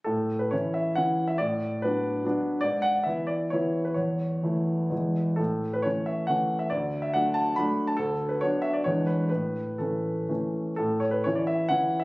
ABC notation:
X:1
M:3/4
L:1/16
Q:1/4=135
K:A
V:1 name="Grand piano"
A3 B c2 e2 f3 e | d4 B8 | d2 f2 e2 d2 c3 B | c8 z4 |
A3 B c2 e2 f3 e | d3 e f2 a2 b3 a | A3 B c2 e d c2 B2 | B4 A4 z4 |
A2 c B c d e2 f3 e |]
V:2 name="Grand piano"
A,,4 [E,CE]4 [E,CE]4 | A,,4 [F,B,D]4 [F,B,D]4 | G,,4 [E,B,E]4 [E,B,E]4 | E,,4 [E,A,E]4 [E,,E,G,E]4 |
A,,4 [E,A,C]4 [E,A,C]4 | D,,4 [F,A,D]4 [F,A,D]4 | D,,4 [F,B,D]4 [E,,E,G,D]4 | A,,4 [E,A,C]4 [E,A,C]4 |
A,,4 [E,CE]4 [E,CE]4 |]